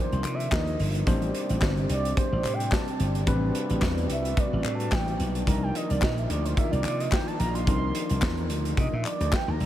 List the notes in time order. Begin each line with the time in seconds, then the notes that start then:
Already playing: D#3 F3 A#3 D4 D#4 F4 A#4
0.00 C5
0.12 C2, closed hi-hat
0.24 C3, clap, closed hi-hat
0.34 E5
0.40 closed hi-hat
0.51 D#2 F3 D4 D#4 A#4 D#5, kick, snare, clap
0.67 closed hi-hat
0.80 G1, open hi-hat
0.95 closed hi-hat
1.06 A1 C3 G3 C4 D4 G4 C5 D5, kick, closed hi-hat
1.22 closed hi-hat
1.34 closed hi-hat
1.49 A1, closed hi-hat
1.62 G1, kick, snare, clap
1.77 closed hi-hat
1.89 C2 D5, closed hi-hat
2.05 closed hi-hat
2.17 C5, kick, closed hi-hat
2.32 A1
2.44 A2, clap, closed hi-hat
2.54 G5
2.60 closed hi-hat
2.72 A5, kick, snare, clap
2.88 closed hi-hat
3.00 G1, closed hi-hat
3.15 closed hi-hat
3.26 A1 G3 C4 D4 F#4 B4, kick, closed hi-hat
3.55 closed hi-hat
3.70 A1, closed hi-hat
3.82 E2, kick, snare, clap
3.98 closed hi-hat
4.10 C2 E5, closed hi-hat
4.25 closed hi-hat
4.37 D5, kick, closed hi-hat
4.53 A1
4.64 A2, clap, closed hi-hat
4.75 A5
4.80 closed hi-hat
4.92 A1 G5, kick, snare, clap
5.08 closed hi-hat
5.20 B1, closed hi-hat
5.35 closed hi-hat
5.46 C2 D#3 F3 A#3 D4 D#4 F4 A#4 A#5, kick, closed hi-hat
5.63 G5
5.75 D#5, closed hi-hat
5.90 C2 D5, closed hi-hat
6.02 A#1 D#5, kick, snare, clap
6.18 E5, closed hi-hat
6.30 D2 D5, closed hi-hat
6.45 C5, closed hi-hat
6.57 E5, kick, closed hi-hat
6.72 C2 D5, closed hi-hat
6.84 C3 D5, clap, closed hi-hat
7.00 D#5, closed hi-hat
7.12 G5, kick, snare, clap
7.27 A5, closed hi-hat
7.39 A#1 A#5, closed hi-hat
7.55 C6, closed hi-hat
7.67 C2 F3 D4 D#4 A#4, kick, closed hi-hat
7.95 closed hi-hat
8.10 C2, closed hi-hat
8.22 E2, kick, snare, clap
8.37 closed hi-hat
8.50 D2, closed hi-hat
8.65 closed hi-hat
8.77 C3 D#5, kick, closed hi-hat
8.93 A#2 E5
9.05 D5, clap, closed hi-hat
9.20 D2, closed hi-hat
9.32 G5, kick, snare, clap
9.48 D#2 A#5
9.60 C2, open hi-hat